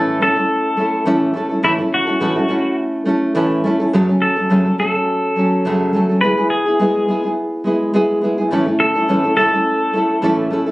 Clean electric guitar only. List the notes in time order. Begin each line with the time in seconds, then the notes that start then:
Already playing: A4
0.22 A4
1.64 E4
1.94 F#4
4.22 A4
4.80 A4
6.21 B4
6.50 G#4
8.80 A4
9.37 A4